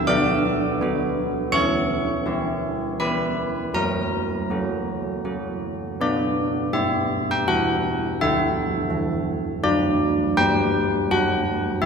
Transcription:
0.07 B3 F#4 D5 D6
0.81 B3 F#4
1.52 E3 C#5 C#6
2.26 E4 G4
3.00 E4 G4 B4 B5
3.74 F#3 A#4 A#5
4.50 C#4 F#4
5.25 C#4 F#4
6.01 B3 F#4 D5
6.73 G3 E5
7.31 G5
7.48 E3 F#5
8.21 D3 F#4 E5
8.90 E3
9.64 F#3 D5
10.37 G3 B4 G5
11.11 F#3 F#5
11.82 E5

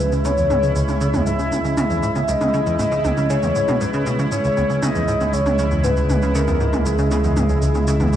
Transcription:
Already playing: C#2 C#3 G#3 E4 B4
0.12 C#3, cabasa
0.25 C#3 C#5, high tom, cabasa
0.37 E2, cabasa
0.50 G#2, high tom, cabasa
0.63 C#3, cabasa
0.76 C#2, cabasa
0.88 C#3, high tom, cabasa
1.01 C#3, cabasa
1.14 E2, high tom, cabasa
1.26 G#2 E5, cabasa
1.39 C#3, cabasa
1.52 C#2, high tom, cabasa
1.65 C#3, cabasa
1.77 C#3 E5, high tom, cabasa
1.90 E2, cabasa
2.03 G#2, cabasa
2.16 C#3, high tom, cabasa
2.28 C#2 D#5, cabasa
2.41 C#3, high tom, cabasa
2.54 C#3, cabasa
2.66 E2, cabasa
2.79 G#2, high tom, cabasa
2.92 C#3, cabasa
3.04 C#2, high tom, cabasa
3.17 C#3, cabasa
3.30 C#3 C#5, cabasa
3.43 E2, high tom, cabasa
3.55 G#2, cabasa
3.68 B2, high tom, cabasa
3.81 G#2 B4, cabasa
3.93 C#3, cabasa
4.06 B2, high tom, cabasa
4.19 C#3, cabasa
4.31 C#2 G#2 C#5, cabasa
4.44 C#2, cabasa
4.57 C#2, high tom, cabasa
4.70 C#3, cabasa
4.82 C#3 D#5, high tom, cabasa
4.95 E2, cabasa
5.08 G#2, cabasa
5.21 C#2, high tom, cabasa
5.33 C#2 C#5, cabasa
5.46 C#3, high tom, cabasa
5.59 C#3, cabasa
5.71 E2, cabasa
5.84 G#2 B4, high tom, cabasa
5.97 C#2, cabasa
6.10 C#2, high tom, cabasa
6.22 C#3, cabasa
6.35 C#3 A#4, cabasa
6.48 E2, high tom, cabasa
6.60 G#2, cabasa
6.73 C#2, high tom, cabasa
6.86 C#2 G#4, cabasa
6.98 C#3, cabasa
7.11 C#3 G#4, high tom, cabasa
7.24 E2, cabasa
7.37 G#2, high tom, cabasa
7.49 C#2, cabasa
7.62 C#2, cabasa
7.75 C#3, high tom, cabasa
7.87 C#3, cabasa
8.00 E2, high tom, cabasa
8.13 G#2, cabasa

